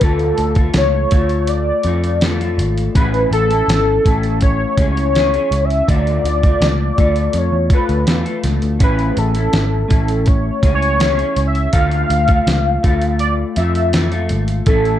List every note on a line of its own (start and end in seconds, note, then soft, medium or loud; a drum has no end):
0.00 0.31 D2 medium
0.00 0.56 D3 medium
0.00 0.56 A3 medium
0.00 0.57 F4 medium
0.00 0.56 A4 medium
0.00 0.76 A4 loud
0.00 kick loud
0.00 closed hi-hat medium
0.19 closed hi-hat soft
0.38 0.68 D2 loud
0.38 closed hi-hat medium
0.55 1.12 F4 soft
0.55 1.12 A4 medium
0.55 kick medium
0.55 closed hi-hat medium
0.60 1.11 A3 soft
0.74 1.04 C#2 medium
0.74 1.50 C#5 medium
0.74 snare loud
0.74 closed hi-hat medium
1.11 1.70 D2 medium
1.11 1.86 A3 medium
1.11 1.86 F4 medium
1.11 1.88 A4 medium
1.11 kick medium
1.11 closed hi-hat medium
1.29 closed hi-hat soft
1.47 2.22 D5 loud
1.47 closed hi-hat medium
1.83 2.60 F2 medium
1.83 2.22 A3 medium
1.83 2.23 F4 medium
1.83 closed hi-hat medium
1.88 2.23 A4 medium
2.04 closed hi-hat soft
2.21 2.40 E3 medium
2.21 2.41 A3 medium
2.21 2.41 F4 medium
2.21 2.39 A4 medium
2.21 snare loud
2.21 closed hi-hat medium
2.40 2.95 A3 soft
2.40 2.96 F4 medium
2.40 2.95 A4 medium
2.40 closed hi-hat soft
2.58 2.87 G#1 medium
2.58 closed hi-hat medium
2.78 closed hi-hat soft
2.95 3.24 A1 medium
2.95 3.50 A3 medium
2.95 3.50 C#4 medium
2.95 3.51 E4 medium
2.95 3.51 G#4 medium
2.95 3.29 B4 medium
2.95 kick loud
2.95 closed hi-hat medium
3.14 closed hi-hat soft
3.31 3.61 A1 loud
3.31 4.38 A4 loud
3.31 closed hi-hat medium
3.51 4.04 C#4 soft
3.51 4.06 E4 soft
3.51 closed hi-hat soft
3.68 3.97 G#1 medium
3.68 snare loud
3.68 closed hi-hat medium
4.05 4.64 A1 medium
4.05 4.77 A3 medium
4.05 4.77 C#4 medium
4.05 4.79 E4 medium
4.05 kick medium
4.05 closed hi-hat medium
4.23 closed hi-hat soft
4.41 4.87 C#5 loud
4.41 kick medium
4.41 closed hi-hat medium
4.77 5.36 C#2 medium
4.77 5.13 A3 soft
4.77 5.15 C#4 medium
4.77 5.15 E4 medium
4.77 5.16 G#4 medium
4.77 kick medium
4.77 closed hi-hat medium
4.91 5.66 C#5 loud
4.97 closed hi-hat soft
5.15 5.33 A3 soft
5.15 5.34 C#4 medium
5.15 5.34 E4 medium
5.15 5.32 G#4 medium
5.15 snare medium
5.15 closed hi-hat medium
5.34 5.89 C#4 soft
5.34 5.89 E4 soft
5.34 5.88 G#4 medium
5.34 closed hi-hat soft
5.51 5.80 C#2 medium
5.51 closed hi-hat medium
5.65 5.91 E5 medium
5.70 closed hi-hat soft
5.88 6.17 D2 medium
5.88 6.43 D3 medium
5.88 6.44 A3 medium
5.88 6.43 F4 medium
5.88 6.41 A4 medium
5.88 7.39 D5 loud
5.88 kick loud
5.88 closed hi-hat medium
6.07 closed hi-hat soft
6.24 6.54 D2 medium
6.24 closed hi-hat medium
6.43 6.97 A3 soft
6.43 6.98 F4 medium
6.43 6.98 A4 medium
6.43 kick medium
6.43 closed hi-hat soft
6.61 6.90 C#2 medium
6.61 snare loud
6.61 closed hi-hat medium
6.98 7.27 D2 medium
6.98 7.71 A3 medium
6.98 7.72 F4 medium
6.98 7.73 A4 medium
6.98 kick medium
6.98 closed hi-hat medium
7.16 closed hi-hat soft
7.33 7.49 F2 medium
7.33 closed hi-hat medium
7.38 7.73 C#5 loud
7.52 7.67 E2 medium
7.70 8.07 A3 medium
7.70 8.08 F4 medium
7.70 8.09 A4 medium
7.70 kick medium
7.70 closed hi-hat medium
7.74 8.42 B4 medium
7.89 8.04 D2 medium
7.89 closed hi-hat soft
8.07 8.22 E2 medium
8.07 8.25 E3 medium
8.07 8.26 A3 medium
8.07 8.26 F4 medium
8.07 8.24 A4 medium
8.07 snare medium
8.07 closed hi-hat medium
8.25 8.78 A3 soft
8.25 8.80 F4 soft
8.25 8.81 A4 soft
8.25 closed hi-hat soft
8.44 8.59 C#2 medium
8.44 snare soft
8.44 closed hi-hat medium
8.62 8.77 D2 medium
8.62 closed hi-hat soft
8.79 9.10 A1 medium
8.79 9.35 A3 medium
8.79 9.36 C#4 medium
8.79 9.35 E4 medium
8.79 9.36 G#4 medium
8.79 9.20 B4 loud
8.79 kick loud
8.79 closed hi-hat medium
8.99 closed hi-hat soft
9.17 9.47 A1 medium
9.17 10.28 A4 medium
9.17 closed hi-hat medium
9.35 9.88 C#4 soft
9.35 9.89 E4 soft
9.35 closed hi-hat soft
9.53 9.83 G#1 medium
9.53 snare loud
9.53 closed hi-hat medium
9.88 10.49 A1 medium
9.88 10.62 A3 medium
9.88 10.62 C#4 soft
9.88 10.64 E4 medium
9.88 kick medium
9.88 closed hi-hat medium
10.08 closed hi-hat soft
10.26 10.74 C#5 loud
10.26 kick medium
10.26 closed hi-hat medium
10.62 11.22 C#2 medium
10.62 10.98 A3 medium
10.62 10.99 C#4 soft
10.62 11.00 E4 medium
10.62 11.00 G#4 medium
10.62 kick medium
10.62 closed hi-hat medium
10.75 11.45 C#5 medium
10.82 closed hi-hat soft
10.99 11.18 A3 medium
10.99 11.18 C#4 medium
10.99 11.17 E4 medium
10.99 11.15 G#4 medium
10.99 snare loud
10.99 closed hi-hat medium
11.16 11.73 C#4 soft
11.16 11.73 E4 soft
11.16 11.73 G#4 medium
11.16 closed hi-hat soft
11.36 11.66 C#2 medium
11.36 closed hi-hat medium
11.47 11.71 E5 loud
11.55 closed hi-hat soft
11.73 12.03 D2 medium
11.73 12.28 D3 medium
11.73 12.29 A3 medium
11.73 12.28 F4 medium
11.73 12.26 A4 medium
11.73 13.16 F5 loud
11.73 kick medium
11.73 closed hi-hat medium
11.91 closed hi-hat soft
12.10 12.40 D2 loud
12.10 closed hi-hat medium
12.27 12.82 A3 soft
12.27 12.83 F4 soft
12.27 12.83 A4 medium
12.27 kick medium
12.27 closed hi-hat medium
12.47 12.76 C#2 medium
12.47 snare loud
12.47 closed hi-hat medium
12.83 13.43 D2 medium
12.83 13.57 A3 medium
12.83 13.57 F4 medium
12.83 13.59 A4 medium
12.83 kick medium
12.83 closed hi-hat medium
13.02 closed hi-hat soft
13.19 13.34 D5 loud
13.19 closed hi-hat medium
13.56 14.32 F2 medium
13.56 13.93 A3 medium
13.56 13.94 F4 medium
13.56 13.95 A4 medium
13.56 14.26 E5 medium
13.56 closed hi-hat medium
13.75 closed hi-hat soft
13.93 14.12 E3 medium
13.93 14.13 A3 medium
13.93 14.12 F4 medium
13.93 14.11 A4 medium
13.93 snare medium
13.93 closed hi-hat medium
14.12 14.66 A3 soft
14.12 14.68 F4 medium
14.12 14.67 A4 medium
14.12 closed hi-hat soft
14.29 14.60 G#1 medium
14.29 closed hi-hat medium
14.48 closed hi-hat soft
14.66 14.96 A1 loud
14.66 14.99 A3 medium
14.66 14.99 C#4 medium
14.66 14.99 E4 medium
14.66 14.99 A4 medium
14.66 kick loud
14.66 closed hi-hat medium
14.85 closed hi-hat soft